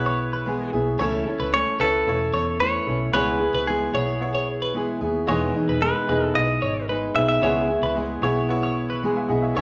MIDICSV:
0, 0, Header, 1, 6, 480
1, 0, Start_track
1, 0, Key_signature, 4, "minor"
1, 0, Tempo, 535954
1, 894, Time_signature, 4, 2, 24, 8
1, 8607, End_track
2, 0, Start_track
2, 0, Title_t, "Clean electric guitar"
2, 0, Program_c, 0, 27
2, 56, Note_on_c, 0, 73, 76
2, 169, Note_off_c, 0, 73, 0
2, 297, Note_on_c, 0, 71, 78
2, 409, Note_off_c, 0, 71, 0
2, 890, Note_on_c, 0, 73, 81
2, 1006, Note_off_c, 0, 73, 0
2, 1252, Note_on_c, 0, 71, 77
2, 1367, Note_off_c, 0, 71, 0
2, 1611, Note_on_c, 0, 71, 73
2, 1951, Note_off_c, 0, 71, 0
2, 2093, Note_on_c, 0, 73, 81
2, 2207, Note_off_c, 0, 73, 0
2, 2336, Note_on_c, 0, 71, 78
2, 2673, Note_off_c, 0, 71, 0
2, 2815, Note_on_c, 0, 73, 89
2, 2928, Note_off_c, 0, 73, 0
2, 3175, Note_on_c, 0, 71, 78
2, 3288, Note_off_c, 0, 71, 0
2, 3535, Note_on_c, 0, 73, 77
2, 3762, Note_off_c, 0, 73, 0
2, 3892, Note_on_c, 0, 73, 66
2, 4007, Note_off_c, 0, 73, 0
2, 4138, Note_on_c, 0, 71, 67
2, 4250, Note_off_c, 0, 71, 0
2, 4734, Note_on_c, 0, 73, 82
2, 4848, Note_off_c, 0, 73, 0
2, 5097, Note_on_c, 0, 71, 72
2, 5209, Note_off_c, 0, 71, 0
2, 5455, Note_on_c, 0, 71, 67
2, 5793, Note_off_c, 0, 71, 0
2, 5929, Note_on_c, 0, 73, 77
2, 6046, Note_off_c, 0, 73, 0
2, 6173, Note_on_c, 0, 71, 82
2, 6512, Note_off_c, 0, 71, 0
2, 6654, Note_on_c, 0, 73, 80
2, 6768, Note_off_c, 0, 73, 0
2, 7013, Note_on_c, 0, 71, 88
2, 7128, Note_off_c, 0, 71, 0
2, 7372, Note_on_c, 0, 73, 70
2, 7601, Note_off_c, 0, 73, 0
2, 7732, Note_on_c, 0, 73, 78
2, 7847, Note_off_c, 0, 73, 0
2, 7969, Note_on_c, 0, 71, 75
2, 8086, Note_off_c, 0, 71, 0
2, 8568, Note_on_c, 0, 73, 81
2, 8607, Note_off_c, 0, 73, 0
2, 8607, End_track
3, 0, Start_track
3, 0, Title_t, "Clean electric guitar"
3, 0, Program_c, 1, 27
3, 0, Note_on_c, 1, 71, 89
3, 629, Note_off_c, 1, 71, 0
3, 1377, Note_on_c, 1, 73, 89
3, 1598, Note_off_c, 1, 73, 0
3, 1620, Note_on_c, 1, 69, 101
3, 2327, Note_off_c, 1, 69, 0
3, 2331, Note_on_c, 1, 73, 87
3, 2804, Note_off_c, 1, 73, 0
3, 2808, Note_on_c, 1, 71, 92
3, 3291, Note_on_c, 1, 68, 70
3, 3305, Note_off_c, 1, 71, 0
3, 4216, Note_off_c, 1, 68, 0
3, 5213, Note_on_c, 1, 71, 76
3, 5686, Note_off_c, 1, 71, 0
3, 5690, Note_on_c, 1, 75, 97
3, 6138, Note_off_c, 1, 75, 0
3, 6409, Note_on_c, 1, 76, 95
3, 6514, Note_off_c, 1, 76, 0
3, 6524, Note_on_c, 1, 76, 113
3, 7214, Note_off_c, 1, 76, 0
3, 8607, End_track
4, 0, Start_track
4, 0, Title_t, "Upright piano"
4, 0, Program_c, 2, 0
4, 0, Control_c, 2, 64, 127
4, 0, Note_on_c, 2, 59, 78
4, 0, Note_on_c, 2, 64, 70
4, 0, Note_on_c, 2, 73, 96
4, 793, Note_off_c, 2, 59, 0
4, 798, Note_off_c, 2, 64, 0
4, 803, Note_off_c, 2, 73, 0
4, 888, Note_on_c, 2, 57, 90
4, 896, Note_on_c, 2, 64, 84
4, 904, Note_on_c, 2, 73, 96
4, 906, Control_c, 2, 64, 0
4, 1045, Control_c, 2, 64, 127
4, 1532, Note_off_c, 2, 57, 0
4, 1536, Note_off_c, 2, 64, 0
4, 1540, Note_off_c, 2, 73, 0
4, 1616, Note_on_c, 2, 57, 74
4, 1627, Note_on_c, 2, 64, 67
4, 1634, Note_on_c, 2, 73, 78
4, 1828, Note_off_c, 2, 57, 0
4, 1834, Note_off_c, 2, 64, 0
4, 1837, Note_off_c, 2, 73, 0
4, 1854, Note_on_c, 2, 57, 83
4, 1860, Note_on_c, 2, 64, 69
4, 1868, Note_on_c, 2, 73, 86
4, 2709, Note_off_c, 2, 57, 0
4, 2712, Note_off_c, 2, 64, 0
4, 2716, Note_off_c, 2, 73, 0
4, 2796, Note_on_c, 2, 59, 80
4, 2811, Note_on_c, 2, 64, 68
4, 2814, Note_on_c, 2, 73, 89
4, 2824, Control_c, 2, 64, 0
4, 2996, Control_c, 2, 64, 127
4, 3446, Note_off_c, 2, 59, 0
4, 3454, Note_off_c, 2, 64, 0
4, 3455, Note_off_c, 2, 73, 0
4, 3515, Note_on_c, 2, 59, 69
4, 3527, Note_on_c, 2, 64, 58
4, 3531, Note_on_c, 2, 73, 77
4, 3738, Note_off_c, 2, 59, 0
4, 3744, Note_off_c, 2, 64, 0
4, 3746, Note_off_c, 2, 73, 0
4, 3761, Note_on_c, 2, 59, 79
4, 3772, Note_on_c, 2, 64, 64
4, 3780, Note_on_c, 2, 73, 86
4, 4623, Note_off_c, 2, 59, 0
4, 4628, Note_off_c, 2, 64, 0
4, 4632, Note_off_c, 2, 73, 0
4, 4712, Note_on_c, 2, 56, 82
4, 4723, Note_on_c, 2, 64, 83
4, 4726, Note_on_c, 2, 75, 102
4, 4743, Control_c, 2, 64, 0
4, 4876, Control_c, 2, 64, 127
4, 5364, Note_off_c, 2, 56, 0
4, 5370, Note_off_c, 2, 64, 0
4, 5371, Note_off_c, 2, 75, 0
4, 5440, Note_on_c, 2, 56, 67
4, 5447, Note_on_c, 2, 64, 62
4, 5454, Note_on_c, 2, 75, 72
4, 5661, Note_off_c, 2, 56, 0
4, 5664, Note_off_c, 2, 64, 0
4, 5668, Note_off_c, 2, 75, 0
4, 5675, Note_on_c, 2, 56, 80
4, 5685, Note_on_c, 2, 64, 70
4, 5698, Note_on_c, 2, 75, 86
4, 6540, Note_off_c, 2, 56, 0
4, 6545, Note_off_c, 2, 64, 0
4, 6551, Note_off_c, 2, 75, 0
4, 6638, Note_on_c, 2, 59, 79
4, 6645, Note_on_c, 2, 64, 72
4, 6659, Note_on_c, 2, 73, 82
4, 6666, Control_c, 2, 64, 0
4, 6814, Control_c, 2, 64, 127
4, 7287, Note_off_c, 2, 59, 0
4, 7291, Note_off_c, 2, 64, 0
4, 7298, Note_off_c, 2, 73, 0
4, 7364, Note_on_c, 2, 59, 87
4, 7369, Note_on_c, 2, 64, 81
4, 7379, Note_on_c, 2, 73, 92
4, 7583, Note_off_c, 2, 59, 0
4, 7585, Note_off_c, 2, 64, 0
4, 7590, Note_off_c, 2, 73, 0
4, 7600, Note_on_c, 2, 59, 99
4, 7614, Note_on_c, 2, 64, 84
4, 7617, Note_on_c, 2, 73, 98
4, 8096, Note_off_c, 2, 73, 0
4, 8202, Note_on_c, 2, 80, 62
4, 8212, Note_on_c, 2, 76, 50
4, 8316, Note_on_c, 2, 78, 69
4, 8322, Note_off_c, 2, 80, 0
4, 8327, Note_off_c, 2, 76, 0
4, 8327, Note_on_c, 2, 75, 55
4, 8439, Note_off_c, 2, 78, 0
4, 8439, Note_on_c, 2, 76, 63
4, 8445, Note_off_c, 2, 75, 0
4, 8450, Note_on_c, 2, 73, 51
4, 8463, Note_off_c, 2, 59, 0
4, 8470, Note_off_c, 2, 64, 0
4, 8551, Note_on_c, 2, 57, 89
4, 8553, Note_off_c, 2, 73, 0
4, 8562, Note_on_c, 2, 64, 89
4, 8567, Note_on_c, 2, 73, 103
4, 8586, Control_c, 2, 64, 0
4, 8607, Note_off_c, 2, 57, 0
4, 8607, Note_off_c, 2, 64, 0
4, 8607, Note_off_c, 2, 73, 0
4, 8607, Note_off_c, 2, 76, 0
4, 8607, End_track
5, 0, Start_track
5, 0, Title_t, "Steel-string acoustic guitar"
5, 0, Program_c, 3, 25
5, 0, Note_on_c, 3, 59, 44
5, 0, Note_on_c, 3, 64, 49
5, 0, Note_on_c, 3, 68, 49
5, 403, Note_off_c, 3, 59, 0
5, 408, Note_on_c, 3, 56, 62
5, 414, Note_on_c, 3, 59, 72
5, 415, Note_off_c, 3, 68, 0
5, 417, Note_off_c, 3, 64, 0
5, 420, Note_on_c, 3, 64, 71
5, 431, Note_on_c, 3, 68, 76
5, 641, Note_off_c, 3, 68, 0
5, 651, Note_off_c, 3, 56, 0
5, 651, Note_off_c, 3, 64, 0
5, 652, Note_on_c, 3, 68, 67
5, 654, Note_off_c, 3, 59, 0
5, 662, Note_on_c, 3, 64, 61
5, 670, Note_on_c, 3, 59, 50
5, 891, Note_off_c, 3, 64, 0
5, 892, Note_off_c, 3, 68, 0
5, 895, Note_on_c, 3, 49, 83
5, 897, Note_on_c, 3, 57, 93
5, 899, Note_off_c, 3, 59, 0
5, 901, Note_on_c, 3, 64, 89
5, 903, Note_on_c, 3, 61, 92
5, 908, Note_on_c, 3, 69, 106
5, 1118, Note_off_c, 3, 69, 0
5, 1128, Note_off_c, 3, 64, 0
5, 1129, Note_on_c, 3, 69, 59
5, 1134, Note_off_c, 3, 49, 0
5, 1135, Note_off_c, 3, 57, 0
5, 1138, Note_off_c, 3, 61, 0
5, 1139, Note_on_c, 3, 64, 49
5, 1151, Note_on_c, 3, 61, 43
5, 1361, Note_off_c, 3, 61, 0
5, 1366, Note_on_c, 3, 57, 62
5, 1370, Note_off_c, 3, 64, 0
5, 1371, Note_off_c, 3, 69, 0
5, 1372, Note_on_c, 3, 61, 63
5, 1380, Note_on_c, 3, 64, 57
5, 1385, Note_on_c, 3, 69, 73
5, 1598, Note_off_c, 3, 69, 0
5, 1609, Note_on_c, 3, 69, 54
5, 1610, Note_off_c, 3, 57, 0
5, 1611, Note_off_c, 3, 64, 0
5, 1613, Note_off_c, 3, 61, 0
5, 1621, Note_on_c, 3, 64, 54
5, 1635, Note_on_c, 3, 61, 46
5, 2328, Note_on_c, 3, 57, 52
5, 2331, Note_off_c, 3, 69, 0
5, 2332, Note_off_c, 3, 61, 0
5, 2336, Note_on_c, 3, 61, 59
5, 2342, Note_off_c, 3, 64, 0
5, 2346, Note_on_c, 3, 64, 59
5, 2349, Note_on_c, 3, 69, 69
5, 2556, Note_off_c, 3, 69, 0
5, 2567, Note_on_c, 3, 69, 54
5, 2568, Note_off_c, 3, 64, 0
5, 2571, Note_off_c, 3, 57, 0
5, 2575, Note_off_c, 3, 61, 0
5, 2579, Note_on_c, 3, 64, 48
5, 2586, Note_on_c, 3, 61, 41
5, 2808, Note_on_c, 3, 49, 72
5, 2808, Note_on_c, 3, 56, 67
5, 2810, Note_off_c, 3, 61, 0
5, 2810, Note_off_c, 3, 64, 0
5, 2810, Note_off_c, 3, 69, 0
5, 2813, Note_on_c, 3, 59, 77
5, 2821, Note_on_c, 3, 64, 80
5, 2821, Note_on_c, 3, 68, 88
5, 3034, Note_off_c, 3, 68, 0
5, 3044, Note_on_c, 3, 68, 54
5, 3046, Note_off_c, 3, 64, 0
5, 3051, Note_off_c, 3, 49, 0
5, 3051, Note_off_c, 3, 56, 0
5, 3051, Note_off_c, 3, 59, 0
5, 3057, Note_on_c, 3, 64, 43
5, 3062, Note_on_c, 3, 59, 39
5, 3289, Note_off_c, 3, 59, 0
5, 3289, Note_off_c, 3, 68, 0
5, 3293, Note_on_c, 3, 56, 58
5, 3295, Note_off_c, 3, 64, 0
5, 3299, Note_on_c, 3, 59, 67
5, 3306, Note_on_c, 3, 64, 56
5, 3309, Note_on_c, 3, 68, 62
5, 3508, Note_off_c, 3, 68, 0
5, 3518, Note_off_c, 3, 64, 0
5, 3518, Note_on_c, 3, 68, 56
5, 3529, Note_on_c, 3, 64, 46
5, 3530, Note_off_c, 3, 59, 0
5, 3533, Note_off_c, 3, 56, 0
5, 3541, Note_on_c, 3, 59, 42
5, 4243, Note_on_c, 3, 56, 65
5, 4251, Note_off_c, 3, 59, 0
5, 4255, Note_off_c, 3, 64, 0
5, 4255, Note_on_c, 3, 59, 61
5, 4258, Note_on_c, 3, 64, 65
5, 4264, Note_off_c, 3, 68, 0
5, 4268, Note_on_c, 3, 68, 67
5, 4475, Note_off_c, 3, 68, 0
5, 4486, Note_on_c, 3, 68, 66
5, 4488, Note_off_c, 3, 56, 0
5, 4490, Note_off_c, 3, 64, 0
5, 4494, Note_off_c, 3, 59, 0
5, 4501, Note_on_c, 3, 64, 49
5, 4506, Note_on_c, 3, 59, 51
5, 4722, Note_off_c, 3, 59, 0
5, 4727, Note_off_c, 3, 68, 0
5, 4727, Note_on_c, 3, 52, 75
5, 4729, Note_off_c, 3, 64, 0
5, 4730, Note_on_c, 3, 56, 82
5, 4733, Note_on_c, 3, 59, 84
5, 4733, Note_on_c, 3, 63, 87
5, 4737, Note_on_c, 3, 68, 81
5, 4953, Note_off_c, 3, 68, 0
5, 4964, Note_on_c, 3, 68, 53
5, 4966, Note_off_c, 3, 63, 0
5, 4970, Note_off_c, 3, 52, 0
5, 4972, Note_off_c, 3, 56, 0
5, 4973, Note_off_c, 3, 59, 0
5, 4976, Note_on_c, 3, 63, 57
5, 4983, Note_on_c, 3, 59, 51
5, 5200, Note_off_c, 3, 59, 0
5, 5204, Note_on_c, 3, 56, 64
5, 5209, Note_off_c, 3, 63, 0
5, 5209, Note_off_c, 3, 68, 0
5, 5211, Note_on_c, 3, 59, 55
5, 5220, Note_on_c, 3, 63, 70
5, 5223, Note_on_c, 3, 68, 71
5, 5438, Note_off_c, 3, 68, 0
5, 5449, Note_off_c, 3, 56, 0
5, 5449, Note_on_c, 3, 68, 58
5, 5450, Note_off_c, 3, 63, 0
5, 5452, Note_off_c, 3, 59, 0
5, 5460, Note_on_c, 3, 63, 52
5, 5471, Note_on_c, 3, 59, 42
5, 6165, Note_on_c, 3, 56, 50
5, 6168, Note_off_c, 3, 63, 0
5, 6169, Note_off_c, 3, 59, 0
5, 6173, Note_on_c, 3, 59, 60
5, 6179, Note_on_c, 3, 63, 64
5, 6181, Note_off_c, 3, 68, 0
5, 6185, Note_on_c, 3, 68, 59
5, 6390, Note_off_c, 3, 68, 0
5, 6401, Note_on_c, 3, 68, 53
5, 6404, Note_off_c, 3, 63, 0
5, 6409, Note_off_c, 3, 59, 0
5, 6410, Note_off_c, 3, 56, 0
5, 6415, Note_on_c, 3, 63, 54
5, 6419, Note_on_c, 3, 59, 44
5, 6641, Note_off_c, 3, 59, 0
5, 6643, Note_on_c, 3, 49, 88
5, 6648, Note_off_c, 3, 68, 0
5, 6649, Note_on_c, 3, 56, 78
5, 6652, Note_on_c, 3, 59, 83
5, 6654, Note_off_c, 3, 63, 0
5, 6658, Note_on_c, 3, 64, 83
5, 6661, Note_on_c, 3, 68, 88
5, 6870, Note_off_c, 3, 68, 0
5, 6880, Note_on_c, 3, 68, 48
5, 6884, Note_off_c, 3, 64, 0
5, 6888, Note_off_c, 3, 49, 0
5, 6892, Note_off_c, 3, 56, 0
5, 6893, Note_off_c, 3, 59, 0
5, 6895, Note_on_c, 3, 64, 50
5, 6903, Note_on_c, 3, 59, 43
5, 7116, Note_off_c, 3, 59, 0
5, 7119, Note_on_c, 3, 56, 69
5, 7120, Note_off_c, 3, 64, 0
5, 7125, Note_off_c, 3, 68, 0
5, 7127, Note_on_c, 3, 59, 71
5, 7131, Note_on_c, 3, 64, 72
5, 7136, Note_on_c, 3, 68, 71
5, 7350, Note_off_c, 3, 68, 0
5, 7360, Note_off_c, 3, 64, 0
5, 7361, Note_on_c, 3, 68, 55
5, 7367, Note_off_c, 3, 56, 0
5, 7371, Note_off_c, 3, 59, 0
5, 7371, Note_on_c, 3, 64, 59
5, 7382, Note_on_c, 3, 59, 41
5, 8083, Note_off_c, 3, 59, 0
5, 8088, Note_off_c, 3, 68, 0
5, 8088, Note_on_c, 3, 56, 72
5, 8094, Note_on_c, 3, 59, 64
5, 8098, Note_off_c, 3, 64, 0
5, 8102, Note_on_c, 3, 64, 70
5, 8105, Note_on_c, 3, 68, 75
5, 8312, Note_off_c, 3, 68, 0
5, 8323, Note_on_c, 3, 68, 63
5, 8327, Note_off_c, 3, 64, 0
5, 8331, Note_off_c, 3, 56, 0
5, 8334, Note_off_c, 3, 59, 0
5, 8338, Note_on_c, 3, 64, 61
5, 8348, Note_on_c, 3, 59, 46
5, 8568, Note_off_c, 3, 64, 0
5, 8569, Note_off_c, 3, 68, 0
5, 8569, Note_on_c, 3, 49, 82
5, 8573, Note_off_c, 3, 59, 0
5, 8574, Note_on_c, 3, 57, 89
5, 8577, Note_on_c, 3, 61, 88
5, 8579, Note_on_c, 3, 64, 97
5, 8607, Note_off_c, 3, 49, 0
5, 8607, Note_off_c, 3, 57, 0
5, 8607, Note_off_c, 3, 61, 0
5, 8607, Note_off_c, 3, 64, 0
5, 8607, End_track
6, 0, Start_track
6, 0, Title_t, "Fingered electric bass"
6, 0, Program_c, 4, 33
6, 0, Note_on_c, 4, 35, 93
6, 619, Note_off_c, 4, 35, 0
6, 658, Note_on_c, 4, 35, 95
6, 853, Note_off_c, 4, 35, 0
6, 894, Note_on_c, 4, 37, 98
6, 1090, Note_off_c, 4, 37, 0
6, 1252, Note_on_c, 4, 37, 98
6, 1449, Note_off_c, 4, 37, 0
6, 1610, Note_on_c, 4, 37, 98
6, 1808, Note_off_c, 4, 37, 0
6, 1853, Note_on_c, 4, 28, 92
6, 2050, Note_off_c, 4, 28, 0
6, 2088, Note_on_c, 4, 40, 89
6, 2484, Note_off_c, 4, 40, 0
6, 2571, Note_on_c, 4, 35, 106
6, 2769, Note_off_c, 4, 35, 0
6, 2805, Note_on_c, 4, 37, 99
6, 3103, Note_off_c, 4, 37, 0
6, 3167, Note_on_c, 4, 37, 93
6, 3465, Note_off_c, 4, 37, 0
6, 3528, Note_on_c, 4, 35, 83
6, 4455, Note_off_c, 4, 35, 0
6, 4488, Note_on_c, 4, 39, 90
6, 4687, Note_off_c, 4, 39, 0
6, 4733, Note_on_c, 4, 28, 97
6, 4930, Note_off_c, 4, 28, 0
6, 5092, Note_on_c, 4, 28, 90
6, 5289, Note_off_c, 4, 28, 0
6, 5450, Note_on_c, 4, 28, 91
6, 5648, Note_off_c, 4, 28, 0
6, 5695, Note_on_c, 4, 35, 84
6, 5891, Note_off_c, 4, 35, 0
6, 5929, Note_on_c, 4, 32, 82
6, 6325, Note_off_c, 4, 32, 0
6, 6408, Note_on_c, 4, 35, 94
6, 6607, Note_off_c, 4, 35, 0
6, 6644, Note_on_c, 4, 37, 98
6, 6943, Note_off_c, 4, 37, 0
6, 7005, Note_on_c, 4, 37, 92
6, 7304, Note_off_c, 4, 37, 0
6, 7362, Note_on_c, 4, 35, 86
6, 8293, Note_off_c, 4, 35, 0
6, 8325, Note_on_c, 4, 35, 90
6, 8526, Note_off_c, 4, 35, 0
6, 8568, Note_on_c, 4, 37, 102
6, 8607, Note_off_c, 4, 37, 0
6, 8607, End_track
0, 0, End_of_file